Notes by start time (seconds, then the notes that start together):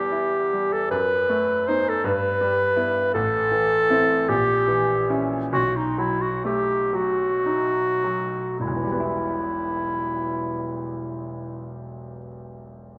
Already playing: E2 G3 B3 G4
0.12 E4
0.53 G3
0.73 A4
0.91 F#2 B4
1.29 A3
1.67 B3 D#4 C5
1.89 A4
2.04 G2 B4
2.41 G3
2.76 B3 E4
3.13 A1 A4
3.51 E3
3.90 C4 E4
4.29 A#1 G4
4.68 E3
5.10 C#4 E4
5.53 B1 F#4
5.76 D#4
5.98 F#3 E4
6.21 F#4
6.45 A3 G4
6.93 F#3 F#4
7.46 D#4
8.04 F#3
8.60 E1 E4
8.67 B1
8.76 E3
8.84 G3
8.92 B3
9.00 E4